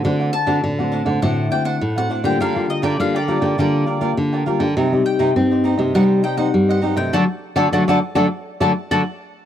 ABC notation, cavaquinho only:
X:1
M:4/4
L:1/16
Q:1/4=102
K:Dphr
V:1 name="Cavaquinho"
[Dcd^f] [cdf]2 [Dcdf] z [cdf] [Dcdf] [cdf] [Dcdf]2 [Dcdf] [Dcdf] z [cdf] [Dcdf] [cdf] | [FBdg] [Bdg]2 [FBdg] z [Bdg] [FBdg] [Bdg] [FBdg]2 [FBdg] [FBdg] z [Bdg] [FBdg] [Bdg] | [EGce] [Gce]2 [EGce] z [Gce] [EGce] [Gce] [EGce]2 [EGce] [EGce] z [Gce] [EGce] [Gce] | [^FAd] z2 [FAd] [FAd] [FAd] z [FAd] z2 [FAd] z [FAd] z3 |]